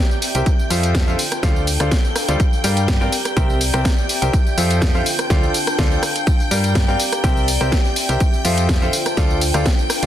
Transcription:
Already playing: C4 G4 D5 E5 G5 G6
0.11 tambourine
0.22 open hi-hat, tambourine
0.35 C2 G4 A#4 C5 E5 G5, closed hi-hat, tambourine
0.46 F4, kick, closed hi-hat, tambourine
0.59 C5, tambourine
0.70 F2 F3 F4 A4 C5 E5 F5 A5, open hi-hat, tambourine
0.83 closed hi-hat, tambourine
0.95 kick, snare, closed hi-hat, tambourine
1.08 F2 D3 F4 A4 C5 E5 F5, tambourine
1.19 D4, open hi-hat, tambourine
1.26 A4
1.32 cross-stick, closed hi-hat, tambourine
1.43 D2 D3 F4 A4 C5 D5 F5, kick, snare, closed hi-hat, tambourine
1.56 tambourine
1.60 F5
1.67 open hi-hat, tambourine
1.80 D2 D3 F4 A4 C5 D5 F5, cross-stick, closed hi-hat, tambourine
1.91 kick, snare, closed hi-hat, tambourine
2.05 tambourine
2.16 cross-stick, open hi-hat, tambourine
2.28 D2 G3 F4 A4 C5 D5 F5, closed hi-hat, tambourine
2.40 G4, kick, closed hi-hat, tambourine
2.53 tambourine
2.64 G2 G3 G4 A#4 D5 F5 G5, open hi-hat, tambourine
2.73 D5, closed hi-hat, tambourine
2.88 kick, snare, closed hi-hat, tambourine
3.01 G2 C4 G4 A#4 D5 F5 G5, tambourine
3.12 C4, open hi-hat, tambourine
3.25 cross-stick, closed hi-hat, tambourine
3.36 C2 C4 G4 A#4 C5 E5 G5, kick, closed hi-hat, tambourine
3.50 tambourine
3.61 open hi-hat, tambourine
3.67 E5
3.74 C2 C4 G4 A#4 C5 E5 G5, cross-stick, closed hi-hat, tambourine
3.85 kick, snare, closed hi-hat, tambourine
3.98 tambourine
4.09 open hi-hat, tambourine
4.22 C2 G4 A#4 C5 E5 G5, closed hi-hat, tambourine
4.33 F4, kick, closed hi-hat, tambourine
4.47 tambourine
4.57 F2 F3 F4 A4 C5 E5 F5, open hi-hat, tambourine
4.71 closed hi-hat, tambourine
4.82 kick, snare, closed hi-hat, tambourine
4.95 F2 D3 F4 A4 C5 E5 F5, tambourine
5.06 D4, open hi-hat, tambourine
5.19 cross-stick, closed hi-hat, tambourine
5.30 D2 D3 F4 A4 C5 D5 F5, kick, snare, closed hi-hat, tambourine
5.43 tambourine
5.54 open hi-hat, tambourine
5.61 F5
5.67 cross-stick, closed hi-hat, tambourine
5.79 D2 D3 F4 A4 C5 D5 F5, kick, snare, closed hi-hat, tambourine
5.92 tambourine
6.03 cross-stick, open hi-hat, tambourine
6.16 closed hi-hat, tambourine
6.27 G4, kick, closed hi-hat, tambourine
6.36 D5, tambourine
6.51 G2 G3 G4 A#4 D5 F5 G5, open hi-hat, tambourine
6.64 closed hi-hat, tambourine
6.75 kick, snare, closed hi-hat, tambourine
6.88 G2 C4 G4 A#4 D5 F5 G5, tambourine
7.00 C4, open hi-hat, tambourine
7.12 cross-stick, closed hi-hat, tambourine
7.24 C2 C4 G4 A#4 C5 E5 G5, kick, closed hi-hat, tambourine
7.37 tambourine
7.48 open hi-hat, tambourine
7.54 E5
7.61 C2 C4 G4 A#4 C5 E5 G5, cross-stick, closed hi-hat, tambourine
7.72 kick, snare, closed hi-hat, tambourine
7.85 tambourine
7.96 open hi-hat, tambourine
8.09 C2 G4 A#4 C5 E5 G5, closed hi-hat, tambourine
8.20 F4, kick, closed hi-hat, tambourine
8.29 C5
8.34 tambourine
8.45 F2 F3 F4 A4 C5 E5 F5, open hi-hat, tambourine
8.58 closed hi-hat, tambourine
8.69 kick, snare, closed hi-hat, tambourine
8.82 F2 D3 F4 A4 C5 E5 F5, tambourine
8.93 D4, open hi-hat, tambourine
9.06 cross-stick, closed hi-hat, tambourine
9.17 D2 D3 F4 A4 C5 D5 F5, kick, snare, closed hi-hat, tambourine
9.30 tambourine
9.41 open hi-hat, tambourine
9.48 F5
9.54 D2 D3 F4 A4 C5 D5 F5, cross-stick, closed hi-hat, tambourine
9.66 kick, snare, closed hi-hat, tambourine
9.79 tambourine
9.90 cross-stick, open hi-hat, tambourine
10.03 D2 G3 F4 A4 C5 D5 F5, closed hi-hat, tambourine

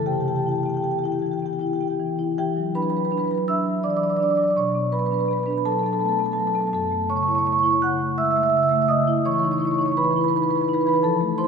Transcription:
0.06 C3 G4 G5
0.13 G4 G5
0.20 G4 G5
0.26 E3 G4 G5
0.35 G4 G5
0.43 E4 G4 G5
0.48 G4 G5
0.56 G4 G5
0.63 B3 G4 G5
0.69 G5
0.74 G4 G5
0.83 E3 G4 G5
0.91 G4 G5
0.99 G4 G5
1.04 E4 G4 G5
1.12 G4 G5
1.19 E3 G4 G5
1.26 G5
1.31 G4 G5
1.38 G4 G5
1.43 B3 G4 G5
1.53 G4 G5
1.59 E4 G4 G5
1.67 G4 G5
1.73 G4 G5
1.80 B3 G4 G5
1.88 G4 G5
2.00 E3
2.19 E4
2.38 E3 G4 G5
2.56 F#3
2.75 D4 B4 B5
2.82 B4 B5
2.90 B4 B5
2.94 F#3 B4 B5
3.05 B4 B5
3.11 D4 B4 B5
3.18 B4 B5
3.24 B4 B5
3.31 F#3 B4 B5
3.38 B5
3.48 D4 E5 E6
3.67 F#3
3.83 E3 D5 D6
3.90 D5 D6
3.97 D5 D6
4.02 F#3 D5 D6
4.10 D5 D6
4.16 D4 D5 D6
4.23 D5 D6
4.29 D5 D6
4.35 F#3 D5 D6
4.42 D5 D6
4.48 D5 D6
4.56 B2 C#5 C#6
4.75 B3
4.92 F#3 B4 B5
4.99 B4 B5
5.06 B4 B5
5.11 D4 B4 B5
5.19 B4 B5
5.25 B3 B4 B5
5.31 B4 B5
5.37 B4 B5
5.43 D4 B4 B5
5.50 B4 B5
5.58 B5
5.65 F#3 A4 A5
5.72 A4 A5
5.79 A4 A5
5.83 B3 A4 A5
5.93 A4 A5
5.99 A3 A4 A5
6.06 A4 A5
6.12 A5
6.17 B3 A4 A5
6.24 A4 A5
6.32 A4 A5
6.37 F#3 A4 A5
6.47 A4 A5
6.54 B3 A4 A5
6.60 A4 A5
6.67 A5
6.73 F#2 A4 A5
6.92 A3
7.10 C#3 C#5 C#6
7.16 C#5 C#6
7.22 C#5 C#6
7.27 E4 C#5 C#6
7.35 C#5 C#6
7.41 C#6
7.45 A3 C#5 C#6
7.52 C#5 C#6
7.59 C#5 C#6
7.63 E4 C#5 C#6
7.71 C#5 C#6
7.82 C#3 F#5 F#6
7.99 A3
8.18 G#3 E5 E6
8.24 E5 E6
8.31 E5 E6
8.36 A3 E5 E6
8.43 E5 E6
8.50 C#3 E5 E6
8.57 E5 E6
8.63 E5 E6
8.69 A3 E6
8.75 E5 E6
8.82 E5 E6
8.88 C#3 D#5 D#6
9.07 E4
9.25 E3 C#5 C#6
9.32 C#5 C#6
9.38 C#5 C#6
9.43 D#4 C#5 C#6
9.51 C#5 C#6
9.58 E4 C#5 C#6
9.65 C#5 C#6
9.71 C#5 C#6
9.78 D#4 C#5 C#6
9.86 C#5 C#6
9.92 C#6
9.97 E3 B4 B5
10.04 B4 B5
10.11 B4 B5
10.16 E4 B5
10.21 B4 B5
10.28 B4 B5
10.34 D#4 B4 B5
10.42 B4 B5
10.49 E4 B4 B5
10.55 B4 B5
10.61 B4 B5
10.68 D#4 B5
10.73 B4 B5
10.81 B4 B5
10.86 E3 B4 B5
10.93 B4 B5
11.03 F3 A4 A5
11.21 A3
11.38 E4 C5 C6
11.44 C6

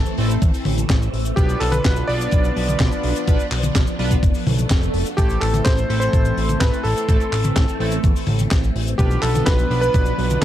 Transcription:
Already playing: E3 A3 C4 A4
0.06 closed hi-hat, cabasa
0.18 A1 A3 C4 E4 A4, open hi-hat
0.30 closed hi-hat, cabasa
0.42 E2, kick, closed hi-hat, cabasa
0.54 open hi-hat, cabasa
0.65 A1, open hi-hat, high tom
0.78 closed hi-hat, high tom, cabasa
0.90 A1, kick, snare, clap, closed hi-hat, cabasa
1.02 closed hi-hat, cabasa
1.13 A1, open hi-hat
1.25 closed hi-hat, cabasa
1.36 B1 F3 B3 D4 F4 G4 B4, kick, closed hi-hat, cabasa
1.49 closed hi-hat, cabasa
1.60 B1 A4, clap, open hi-hat
1.72 B4, closed hi-hat, high tom, cabasa
1.85 B1, kick, snare, clap, closed hi-hat, cabasa
1.96 closed hi-hat, cabasa
2.08 B1 B3 D4 F4 B4 D5, open hi-hat
2.21 closed hi-hat, cabasa
2.31 B1, kick, closed hi-hat, cabasa
2.44 closed hi-hat, cabasa
2.56 B1, open hi-hat
2.68 closed hi-hat, high tom, cabasa
2.80 B1, kick, snare, clap, closed hi-hat, cabasa
2.92 closed hi-hat, cabasa
3.03 B1, open hi-hat
3.16 closed hi-hat, cabasa
3.27 B1 B3 D4 F4 B4, kick, closed hi-hat, cabasa
3.39 closed hi-hat, cabasa
3.51 B1, clap, open hi-hat
3.63 closed hi-hat, high tom, cabasa
3.75 B1, kick, snare, clap, closed hi-hat, cabasa
3.87 closed hi-hat, cabasa
3.99 B1 B3 D4 F4 B4, open hi-hat
4.11 kick, closed hi-hat, cabasa
4.23 F1, kick, closed hi-hat, swell, cabasa
4.34 open hi-hat, cabasa
4.47 B1, open hi-hat, high tom
4.58 closed hi-hat, high tom, cabasa
4.70 F1, kick, snare, clap, closed hi-hat, cabasa
4.82 closed hi-hat, cabasa
4.94 F1, open hi-hat
5.06 closed hi-hat, cabasa
5.17 A1 E3 A3 C4 E4 G4 A4, kick, closed hi-hat, cabasa
5.29 closed hi-hat, cabasa
5.41 A1 A4, clap, open hi-hat
5.54 closed hi-hat, high tom, cabasa
5.64 A1 C5, kick, snare, clap, closed hi-hat, cabasa
5.77 closed hi-hat, cabasa
5.90 A1 A3 C4 E4 A4, open hi-hat
6.00 C5, closed hi-hat, cabasa
6.13 A1, kick, closed hi-hat, cabasa
6.25 closed hi-hat, cabasa
6.37 A1, open hi-hat
6.49 closed hi-hat, high tom, cabasa
6.60 A1 B4, kick, snare, clap, closed hi-hat, cabasa
6.74 closed hi-hat, cabasa
6.84 A1 A4, open hi-hat
6.97 closed hi-hat, cabasa
7.09 A1 A3 C4 E4 A4, kick, closed hi-hat, cabasa
7.20 closed hi-hat, cabasa
7.32 A1, clap, open hi-hat
7.44 closed hi-hat, high tom, cabasa
7.56 A1, kick, snare, clap, closed hi-hat, cabasa
7.68 closed hi-hat, cabasa
7.80 A1 A3 C4 E4 A4, open hi-hat
7.91 closed hi-hat, cabasa
8.04 E2, kick, closed hi-hat, cabasa
8.16 open hi-hat, cabasa
8.27 A1, open hi-hat, high tom
8.39 closed hi-hat, high tom, cabasa
8.51 A1, kick, snare, clap, closed hi-hat, cabasa
8.64 closed hi-hat, cabasa
8.75 A1, open hi-hat
8.87 closed hi-hat, cabasa
8.98 B1 F3 B3 D4 F4 G4 B4, kick, closed hi-hat, cabasa
9.10 closed hi-hat, cabasa
9.22 B1 A4, clap, open hi-hat
9.35 closed hi-hat, high tom, cabasa
9.46 B1 B4, kick, snare, clap, closed hi-hat, cabasa
9.59 closed hi-hat, cabasa
9.70 B1 B3 D4 F4 B4, open hi-hat
9.81 B4, closed hi-hat, cabasa
9.94 B1, kick, closed hi-hat, cabasa
10.06 closed hi-hat, cabasa
10.18 B1, open hi-hat
10.30 closed hi-hat, high tom, cabasa
10.41 A4

